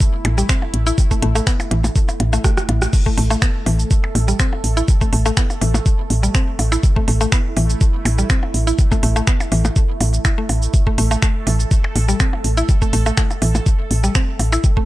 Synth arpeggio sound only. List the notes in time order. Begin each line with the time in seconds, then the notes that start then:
0.38 G3
0.49 C4
0.87 E4
1.11 A3
1.22 A3
1.35 A3
1.47 B3
1.71 E3
2.33 A3
2.44 A3
3.06 A3
3.17 A3
3.30 A3
3.42 B3
3.66 E3
4.28 G3
4.39 C4
4.77 E4
5.01 A3
5.13 A3
5.26 A3
5.37 B3
5.61 E3
6.23 G3
6.35 C4
6.72 E4
6.96 A3
7.08 A3
7.21 A3
7.32 B3
7.57 E3
8.18 G3
8.30 C4
8.67 E4
8.92 A3
9.03 A3
9.16 A3
9.27 B3
9.52 E3
10.25 E4
10.38 A3
10.87 A3
10.98 A3
11.11 A3
11.22 A3
11.47 E3
12.09 G3
12.20 C4
12.57 E4
12.82 A3
12.93 A3
13.06 A3
13.18 A3
13.42 E3
14.04 G3
14.15 C4
14.52 E4
14.77 A3